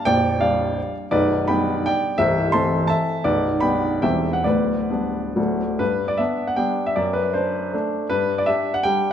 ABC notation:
X:1
M:3/4
L:1/16
Q:1/4=162
K:Gm
V:1 name="Grand piano"
[dg]4 [df]6 z2 | [K:G] [Bd]4 [gb]4 [dg]4 | [ce]4 [ac']4 [ea]4 | [Bd]4 [gb]4 [eg]3 f |
[Bd]8- [Bd]2 z2 | B3 d e3 f g3 e | d2 B2 c8 | B3 d e3 f g3 z |]
V:2 name="Grand piano" clef=bass
[B,,,,B,,,]4 [G,D]8 | [K:G] [B,,,,B,,,]4 [G,B,D]8 | [C,,,C,,]4 [E,A,C]8 | [B,,,,B,,,]4 [G,B,D]4 [E,,,E,,G,C]4 |
[D,,,D,,]4 [G,B,D]4 [D,,,D,,F,A,D]4 | G,,4 [B,D]4 [G,B,D]4 | F,,4 D4 [A,D]4 | G,,4 [DG]4 [G,DG]4 |]